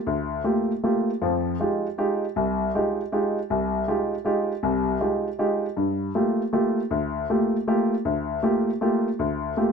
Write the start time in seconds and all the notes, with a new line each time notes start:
0.07 D2
0.44 A3 A#3 F4 G4
0.84 A3 A#3 F4 G4
1.22 F2 F3
1.60 G#3 D#4 F4 G4
1.98 G#3 D#4 F4 G4
2.36 C2
2.75 G#3 D#4 F4 G4
3.12 G#3 D#4 F4 G4
3.50 C2
3.88 G#3 D#4 F4 G4
4.25 G#3 D#4 F4 G4
4.63 C2 C3
5.00 G#3 D#4 F4 G4
5.39 G#3 D#4 F4 G4
5.77 G2
6.15 A3 A#3 F4 G4
6.53 A3 A#3 F4 G4
6.91 D2
7.30 A3 A#3 F4 G4
7.68 A3 A#3 F4 G4
8.05 D2
8.43 A3 A#3 F4 G4
8.81 A3 A#3 F4 G4
9.19 D2
9.57 A3 A#3 F4 G4